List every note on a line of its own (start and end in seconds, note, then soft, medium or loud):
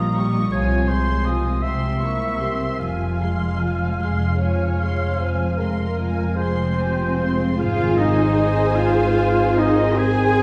0.00 0.41 A#1 soft
0.00 0.41 A#2 soft
0.00 0.56 A#2 soft
0.00 0.15 F3 soft
0.00 1.65 F3 soft
0.00 0.16 G3 soft
0.00 0.16 F4 soft
0.00 1.25 F4 soft
0.00 0.56 C#5 soft
0.00 0.51 D#5 medium
0.00 0.15 A#5 soft
0.17 0.56 G3 soft
0.17 0.53 G3 soft
0.17 0.53 G4 soft
0.17 0.54 C#6 soft
0.52 1.49 C2 soft
0.52 1.49 C3 soft
0.52 1.61 C3 soft
0.52 0.87 F3 soft
0.52 0.87 F4 soft
0.52 0.90 C#5 medium
0.52 0.88 G#5 soft
0.88 1.66 G#3 soft
0.88 1.26 G#3 soft
0.88 1.26 G#4 soft
0.88 1.26 C5 soft
0.88 1.27 C6 soft
1.25 1.63 F3 soft
1.25 1.66 F4 soft
1.25 1.63 F4 soft
1.25 4.39 C5 soft
1.25 1.64 D#5 soft
1.25 1.63 G#5 soft
1.62 2.66 C2 soft
1.62 2.83 C3 soft
1.62 2.66 C3 soft
1.62 1.98 C4 soft
1.62 1.98 G4 soft
1.62 2.79 E5 soft
1.62 1.99 C6 soft
2.00 2.40 A#3 soft
2.00 2.84 A#3 soft
2.00 2.40 E4 soft
2.00 2.41 C#6 soft
2.40 2.80 C4 soft
2.40 2.83 G4 soft
2.40 2.81 G4 soft
2.40 2.84 C#5 soft
2.40 2.81 C6 soft
2.80 3.86 F1 soft
2.80 3.86 F2 soft
2.80 5.19 F2 soft
2.80 3.18 F3 soft
2.80 3.19 F4 soft
2.80 6.33 F5 soft
2.80 3.18 G#5 soft
3.20 5.57 C3 soft
3.20 3.61 G#3 soft
3.20 3.61 G#4 soft
3.20 3.61 C6 soft
3.61 4.01 F3 soft
3.61 4.79 G#3 soft
3.61 4.01 F4 soft
3.61 4.01 G#5 soft
4.00 5.06 F1 soft
4.00 5.06 F2 soft
4.00 4.40 G#3 soft
4.00 6.35 F4 soft
4.00 4.38 G#4 soft
4.00 4.41 C6 soft
4.40 4.78 F3 soft
4.40 6.76 C5 soft
4.40 5.21 C#5 soft
4.40 4.78 G#5 soft
4.80 5.97 G#3 soft
4.80 5.20 G#3 soft
4.80 5.21 C6 soft
5.20 6.24 F1 soft
5.20 7.64 F2 soft
5.20 6.24 F2 soft
5.20 5.59 F3 soft
5.20 5.59 C5 soft
5.20 5.60 G#5 soft
5.58 7.63 C3 soft
5.58 5.98 G#3 soft
5.58 6.37 A#4 soft
5.58 5.99 C6 soft
5.98 6.35 F3 soft
5.98 7.19 G#3 soft
5.98 6.35 G#5 soft
6.36 7.46 F1 soft
6.36 7.46 F2 soft
6.36 6.78 G#3 soft
6.36 7.60 C4 soft
6.36 7.57 C4 soft
6.36 7.63 F4 soft
6.36 6.78 G#4 soft
6.36 7.43 C5 soft
6.36 7.56 C5 soft
6.40 6.80 C6 soft
6.78 7.20 F3 soft
6.78 7.20 G4 soft
6.78 8.37 C5 soft
6.78 7.22 G#5 soft
7.19 7.60 G#3 soft
7.19 7.98 G#3 soft
7.19 7.60 F4 soft
7.19 7.61 C6 soft
7.58 10.43 G#1 medium
7.58 10.43 G#2 soft
7.58 10.43 D#3 medium
7.58 10.43 C4 soft
7.58 7.99 F4 medium
7.58 7.98 F4 medium
7.58 9.95 G#4 medium
7.58 9.95 C5 medium
7.58 7.98 F5 medium
7.58 7.99 F5 medium
7.63 9.96 G#5 medium
7.80 10.43 D#3 soft
7.98 10.43 G#3 soft
7.98 8.77 D#4 medium
7.98 8.77 D#5 medium
7.98 8.77 D#5 soft
8.18 10.35 D#4 soft
8.38 10.16 C5 soft
8.57 9.97 G#4 soft
8.75 9.58 F4 medium
8.75 9.15 D#5 soft
8.75 9.58 F5 medium
8.75 9.59 F5 medium
8.96 9.36 C6 soft
9.17 9.56 D#5 soft
9.37 9.77 C6 soft
9.57 9.98 D#4 medium
9.57 9.99 D#4 medium
9.57 10.43 D#5 soft
9.57 9.99 D#5 medium
9.57 10.00 D#5 medium
9.57 9.98 D#5 medium
9.78 10.43 C6 soft
9.97 10.43 C4 medium
9.97 10.43 G#4 medium
9.97 10.43 G#4 soft
9.97 10.43 G#4 medium
9.97 10.43 C5 medium
9.97 10.43 G#5 medium
10.17 10.43 C5 soft
10.36 10.43 D#4 soft